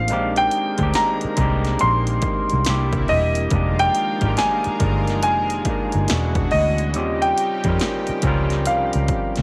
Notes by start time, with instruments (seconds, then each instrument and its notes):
Already playing: fingered electric bass A1, tine electric piano A#3 C4 D4 D#4 F4, grand piano F5
0.08 fingered electric bass A#1, analog synth pad D#3 G#3 A#3, tine electric piano G#3 C4 D4 D#4, closed hi-hat
0.13 tine electric piano G4
0.36 grand piano G5, closed hi-hat
0.51 closed hi-hat
0.78 fingered electric bass D2, tine electric piano G#3 C4 D4 D#4, kick, closed hi-hat
0.83 tine electric piano G4
0.94 grand piano A#5, snare, closed hi-hat
1.21 muted fingered electric bass stroke, closed hi-hat
1.36 fingered electric bass C2, tine electric piano G#3 C4 D4 D#4, kick, closed hi-hat
1.41 tine electric piano G4
1.65 snare, closed hi-hat
1.79 fingered electric bass A#1, grand piano C6, closed hi-hat
2.07 closed hi-hat
2.22 kick, closed hi-hat
2.50 fingered electric bass C2, closed hi-hat
2.65 fingered electric bass C2, analog synth pad C3 G3 E4, tine electric piano G3 A#3 D4 E4, snare, closed hi-hat
2.70 tine electric piano G4
2.93 kick, closed hi-hat
3.08 fingered electric bass E1, grand piano D#5, open hi-hat
3.35 closed hi-hat
3.50 fingered electric bass F1, analog synth pad D#3 F3 G#3 F4 A#4, tine electric piano G#3 A#3 D4 D#4, kick, closed hi-hat
3.55 tine electric piano G4
3.79 grand piano G5, closed hi-hat
3.95 closed hi-hat
4.21 fingered electric bass G#1, tine electric piano G#3 A#3 D4 D#4, kick, closed hi-hat
4.26 tine electric piano G4
4.37 grand piano G#5, snare, closed hi-hat
4.64 muted fingered electric bass stroke, closed hi-hat
4.79 fingered electric bass G1, tine electric piano G#3 A#3 D4 D#4, kick, closed hi-hat
4.84 tine electric piano G#4
5.08 snare, closed hi-hat
5.23 fingered electric bass F1, grand piano G#5, closed hi-hat
5.50 closed hi-hat
5.65 tine electric piano G#3 A#3 D4 D#4, kick, closed hi-hat
5.70 tine electric piano A#4
5.92 fingered electric bass G1, closed hi-hat
6.08 fingered electric bass E1, analog synth pad D3 E3 F#4, tine electric piano G#3 B3 C#4 D4, snare, closed hi-hat
6.13 tine electric piano F#4
6.35 kick, closed hi-hat
6.51 fingered electric bass D2, grand piano D#5, open hi-hat
6.78 closed hi-hat
6.93 fingered electric bass D#2, analog synth pad C#3 D#4 G4, tine electric piano G3 C4 C#4 F4, closed hi-hat
6.98 tine electric piano G4
7.22 grand piano G5, closed hi-hat
7.38 closed hi-hat
7.64 fingered electric bass F2, tine electric piano G3 C4 C#4 F4, kick, closed hi-hat
7.69 tine electric piano A#4
7.80 snare, closed hi-hat
8.07 muted fingered electric bass stroke, closed hi-hat
8.22 fingered electric bass C#2, tine electric piano F3 C4 C#4, kick, closed hi-hat
8.26 tine electric piano G3 F4 A#4
8.50 snare, closed hi-hat
8.65 fingered electric bass C2, grand piano F5, closed hi-hat
8.93 fingered electric bass C#2, closed hi-hat
9.08 kick, closed hi-hat
9.36 fingered electric bass C#2, snare, closed hi-hat